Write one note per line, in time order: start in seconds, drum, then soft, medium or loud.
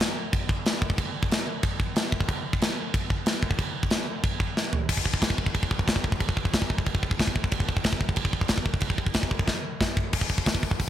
0.00 snare loud
0.00 crash medium
0.33 kick loud
0.33 crash medium
0.49 kick medium
0.66 snare loud
0.66 crash medium
0.82 kick loud
0.90 kick medium
0.98 kick loud
0.98 crash medium
1.23 kick medium
1.31 snare loud
1.31 crash medium
1.63 kick loud
1.63 crash medium
1.80 kick medium
1.96 snare loud
1.96 crash medium
2.12 kick loud
2.21 kick medium
2.29 kick loud
2.29 crash medium
2.53 kick medium
2.62 snare loud
2.62 crash medium
2.94 kick loud
2.94 crash medium
3.10 kick medium
3.26 snare loud
3.26 crash medium
3.43 kick medium
3.51 kick medium
3.59 kick loud
3.59 crash medium
3.83 kick medium
3.90 snare loud
3.90 crash medium
4.24 kick loud
4.24 crash medium
4.40 kick medium
4.57 snare medium
4.73 floor tom loud
4.89 kick medium
4.89 crash loud
4.89 crash medium
4.97 kick medium
5.05 kick medium
5.14 kick medium
5.22 kick medium
5.22 snare loud
5.22 crash medium
5.30 kick medium
5.38 kick medium
5.46 kick medium
5.54 kick medium
5.54 crash medium
5.63 kick medium
5.71 kick medium
5.79 kick medium
5.88 kick medium
5.88 snare loud
5.88 crash medium
5.96 kick medium
6.04 kick medium
6.12 kick medium
6.20 kick medium
6.20 crash medium
6.29 kick medium
6.37 kick medium
6.45 kick medium
6.53 kick medium
6.53 snare loud
6.53 crash medium
6.62 kick medium
6.70 kick medium
6.78 kick medium
6.86 kick medium
6.86 crash medium
6.95 kick medium
7.03 kick medium
7.11 kick medium
7.19 kick medium
7.19 snare loud
7.19 crash medium
7.27 kick medium
7.36 kick medium
7.44 kick medium
7.51 kick loud
7.51 crash medium
7.60 kick medium
7.69 kick medium
7.77 kick medium
7.84 kick medium
7.84 snare loud
7.84 crash medium
7.93 kick medium
8.01 kick medium
8.09 kick medium
8.16 kick medium
8.16 crash medium
8.25 kick medium
8.33 kick medium
8.41 kick medium
8.48 kick loud
8.48 snare loud
8.48 crash medium
8.58 kick medium
8.66 kick medium
8.74 kick medium
8.80 kick loud
8.80 crash medium
8.90 kick medium
8.98 kick medium
9.06 kick medium
9.14 kick medium
9.14 snare loud
9.14 crash medium
9.23 kick medium
9.31 kick medium
9.39 kick medium
9.48 kick medium
9.48 snare medium
9.81 kick medium
9.81 snare medium
9.97 kick medium
10.13 kick medium
10.13 crash loud
10.21 kick medium
10.29 kick medium
10.29 open hi-hat medium
10.38 kick medium
10.46 kick medium
10.46 snare loud
10.46 open hi-hat medium
10.55 kick medium
10.63 kick medium
10.63 open hi-hat medium
10.71 kick medium
10.80 kick medium
10.80 open hi-hat medium